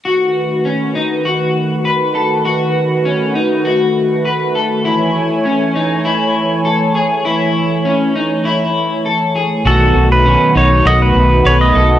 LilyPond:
<<
  \new Staff \with { instrumentName = "Pedal steel guitar" } { \time 4/4 \key b \mixolydian \tempo 4 = 100 r1 | r1 | r1 | r1 |
a'8. b'8. cis''8 dis''16 b'8. cis''16 dis''8. | }
  \new Staff \with { instrumentName = "Clean electric guitar" } { \time 4/4 \key b \mixolydian fis'4 cis'8 dis'8 fis'4 b'8 a'8 | fis'4 cis'8 dis'8 fis'4 b'8 a'8 | e'4 cis'8 dis'8 e'4 a'8 gis'8 | e'4 cis'8 dis'8 e'4 a'8 gis'8 |
fis'4 cis'8 dis'8 fis'4 b'8 a'8 | }
  \new Staff \with { instrumentName = "Analog synth pad" } { \time 4/4 \key b \mixolydian << { <dis fis' b'>1~ | <dis fis' b'>1 | <e cis'' gis''>1~ | <e cis'' gis''>1 |
<dis b fis'>1 | } \\ { a1~ | a1~ | a1~ | a1 |
a1 | } >> }
  \new Staff \with { instrumentName = "Clean electric guitar" } { \time 4/4 \key b \mixolydian r1 | r1 | r1 | r1 |
<b, dis fis b dis' a'>8 <fis b dis' a'>8 <b, dis fis b dis' a'>8 <fis b dis' a'>8 <fis b dis' a'>8 <fis b dis' a'>8 <b, dis fis b dis' a'>8 <fis b dis' a'>8 | }
  \new Staff \with { instrumentName = "Fingered electric bass" } { \clef bass \time 4/4 \key b \mixolydian r1 | r1 | r1 | r1 |
b,,8 b,,8. r16 b,,8 b,,8 b,,8 b,,8 b,,8 | }
>>